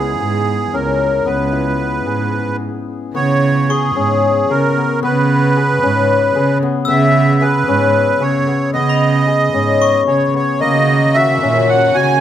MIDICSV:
0, 0, Header, 1, 6, 480
1, 0, Start_track
1, 0, Tempo, 534283
1, 1134, Time_signature, 7, 3, 24, 8
1, 10964, End_track
2, 0, Start_track
2, 0, Title_t, "Glockenspiel"
2, 0, Program_c, 0, 9
2, 3325, Note_on_c, 0, 85, 58
2, 4273, Note_off_c, 0, 85, 0
2, 6155, Note_on_c, 0, 88, 59
2, 7096, Note_off_c, 0, 88, 0
2, 7990, Note_on_c, 0, 83, 49
2, 8819, Note_on_c, 0, 85, 59
2, 8947, Note_off_c, 0, 83, 0
2, 9730, Note_off_c, 0, 85, 0
2, 10964, End_track
3, 0, Start_track
3, 0, Title_t, "Accordion"
3, 0, Program_c, 1, 21
3, 0, Note_on_c, 1, 68, 78
3, 662, Note_on_c, 1, 70, 68
3, 677, Note_off_c, 1, 68, 0
3, 1134, Note_on_c, 1, 71, 68
3, 1151, Note_off_c, 1, 70, 0
3, 2303, Note_off_c, 1, 71, 0
3, 2831, Note_on_c, 1, 73, 89
3, 3316, Note_on_c, 1, 68, 75
3, 3331, Note_off_c, 1, 73, 0
3, 4046, Note_on_c, 1, 70, 82
3, 4061, Note_off_c, 1, 68, 0
3, 4489, Note_off_c, 1, 70, 0
3, 4521, Note_on_c, 1, 71, 79
3, 5914, Note_off_c, 1, 71, 0
3, 6182, Note_on_c, 1, 76, 87
3, 6660, Note_on_c, 1, 71, 81
3, 6673, Note_off_c, 1, 76, 0
3, 7381, Note_on_c, 1, 73, 76
3, 7395, Note_off_c, 1, 71, 0
3, 7821, Note_off_c, 1, 73, 0
3, 7848, Note_on_c, 1, 75, 89
3, 9015, Note_off_c, 1, 75, 0
3, 9055, Note_on_c, 1, 73, 71
3, 9291, Note_off_c, 1, 73, 0
3, 9305, Note_on_c, 1, 73, 74
3, 9525, Note_off_c, 1, 73, 0
3, 9528, Note_on_c, 1, 75, 90
3, 10009, Note_on_c, 1, 76, 90
3, 10029, Note_off_c, 1, 75, 0
3, 10505, Note_on_c, 1, 78, 79
3, 10507, Note_off_c, 1, 76, 0
3, 10733, Note_on_c, 1, 80, 92
3, 10748, Note_off_c, 1, 78, 0
3, 10964, Note_off_c, 1, 80, 0
3, 10964, End_track
4, 0, Start_track
4, 0, Title_t, "Hammered dulcimer"
4, 0, Program_c, 2, 15
4, 0, Note_on_c, 2, 59, 64
4, 0, Note_on_c, 2, 61, 63
4, 0, Note_on_c, 2, 64, 58
4, 0, Note_on_c, 2, 68, 57
4, 180, Note_off_c, 2, 68, 0
4, 183, Note_on_c, 2, 68, 68
4, 655, Note_off_c, 2, 61, 0
4, 659, Note_on_c, 2, 61, 62
4, 1122, Note_off_c, 2, 59, 0
4, 1126, Note_on_c, 2, 59, 71
4, 1366, Note_off_c, 2, 64, 0
4, 1369, Note_on_c, 2, 64, 58
4, 1607, Note_off_c, 2, 59, 0
4, 1610, Note_on_c, 2, 59, 56
4, 1848, Note_off_c, 2, 68, 0
4, 1852, Note_on_c, 2, 68, 56
4, 2822, Note_off_c, 2, 59, 0
4, 2826, Note_on_c, 2, 59, 69
4, 3313, Note_off_c, 2, 68, 0
4, 3317, Note_on_c, 2, 68, 63
4, 3552, Note_off_c, 2, 61, 0
4, 3556, Note_on_c, 2, 61, 66
4, 4036, Note_off_c, 2, 68, 0
4, 4040, Note_on_c, 2, 68, 65
4, 4280, Note_off_c, 2, 59, 0
4, 4283, Note_on_c, 2, 59, 59
4, 4498, Note_off_c, 2, 64, 0
4, 4512, Note_off_c, 2, 59, 0
4, 4516, Note_on_c, 2, 59, 83
4, 4994, Note_off_c, 2, 68, 0
4, 4998, Note_on_c, 2, 68, 68
4, 5231, Note_off_c, 2, 61, 0
4, 5234, Note_on_c, 2, 61, 69
4, 5701, Note_off_c, 2, 68, 0
4, 5705, Note_on_c, 2, 68, 73
4, 5948, Note_off_c, 2, 59, 0
4, 5951, Note_on_c, 2, 59, 73
4, 6176, Note_off_c, 2, 59, 0
4, 6180, Note_on_c, 2, 59, 86
4, 6654, Note_off_c, 2, 68, 0
4, 6657, Note_on_c, 2, 68, 76
4, 6896, Note_off_c, 2, 61, 0
4, 6900, Note_on_c, 2, 61, 77
4, 7367, Note_off_c, 2, 68, 0
4, 7370, Note_on_c, 2, 68, 71
4, 7605, Note_off_c, 2, 59, 0
4, 7609, Note_on_c, 2, 59, 61
4, 7845, Note_off_c, 2, 59, 0
4, 7848, Note_on_c, 2, 59, 74
4, 8322, Note_off_c, 2, 68, 0
4, 8325, Note_on_c, 2, 68, 62
4, 8565, Note_off_c, 2, 61, 0
4, 8569, Note_on_c, 2, 61, 68
4, 9043, Note_off_c, 2, 68, 0
4, 9047, Note_on_c, 2, 68, 65
4, 9287, Note_off_c, 2, 59, 0
4, 9290, Note_on_c, 2, 59, 56
4, 9530, Note_on_c, 2, 58, 75
4, 9584, Note_off_c, 2, 59, 0
4, 10023, Note_on_c, 2, 66, 74
4, 10258, Note_off_c, 2, 61, 0
4, 10262, Note_on_c, 2, 61, 74
4, 10728, Note_off_c, 2, 66, 0
4, 10732, Note_on_c, 2, 66, 73
4, 10964, Note_off_c, 2, 58, 0
4, 10964, Note_off_c, 2, 61, 0
4, 10964, Note_off_c, 2, 66, 0
4, 10964, Note_off_c, 2, 68, 0
4, 10964, End_track
5, 0, Start_track
5, 0, Title_t, "String section"
5, 0, Program_c, 3, 48
5, 9535, Note_on_c, 3, 66, 67
5, 9537, Note_on_c, 3, 61, 53
5, 9540, Note_on_c, 3, 51, 57
5, 10964, Note_off_c, 3, 51, 0
5, 10964, Note_off_c, 3, 61, 0
5, 10964, Note_off_c, 3, 66, 0
5, 10964, End_track
6, 0, Start_track
6, 0, Title_t, "Cello"
6, 0, Program_c, 4, 42
6, 0, Note_on_c, 4, 37, 75
6, 92, Note_off_c, 4, 37, 0
6, 178, Note_on_c, 4, 44, 70
6, 599, Note_off_c, 4, 44, 0
6, 655, Note_on_c, 4, 37, 74
6, 1076, Note_off_c, 4, 37, 0
6, 1137, Note_on_c, 4, 37, 78
6, 1767, Note_off_c, 4, 37, 0
6, 1853, Note_on_c, 4, 44, 72
6, 2281, Note_off_c, 4, 44, 0
6, 2825, Note_on_c, 4, 49, 82
6, 3468, Note_off_c, 4, 49, 0
6, 3559, Note_on_c, 4, 44, 74
6, 3982, Note_off_c, 4, 44, 0
6, 4041, Note_on_c, 4, 49, 73
6, 4251, Note_off_c, 4, 49, 0
6, 4518, Note_on_c, 4, 49, 82
6, 5149, Note_off_c, 4, 49, 0
6, 5238, Note_on_c, 4, 44, 80
6, 5656, Note_off_c, 4, 44, 0
6, 5715, Note_on_c, 4, 49, 77
6, 5922, Note_off_c, 4, 49, 0
6, 6190, Note_on_c, 4, 49, 91
6, 6814, Note_off_c, 4, 49, 0
6, 6899, Note_on_c, 4, 44, 83
6, 7317, Note_off_c, 4, 44, 0
6, 7373, Note_on_c, 4, 49, 69
6, 7583, Note_off_c, 4, 49, 0
6, 7846, Note_on_c, 4, 49, 81
6, 8480, Note_off_c, 4, 49, 0
6, 8568, Note_on_c, 4, 44, 72
6, 8993, Note_off_c, 4, 44, 0
6, 9055, Note_on_c, 4, 49, 67
6, 9266, Note_off_c, 4, 49, 0
6, 9540, Note_on_c, 4, 49, 85
6, 10173, Note_off_c, 4, 49, 0
6, 10261, Note_on_c, 4, 46, 76
6, 10681, Note_off_c, 4, 46, 0
6, 10739, Note_on_c, 4, 49, 73
6, 10949, Note_off_c, 4, 49, 0
6, 10964, End_track
0, 0, End_of_file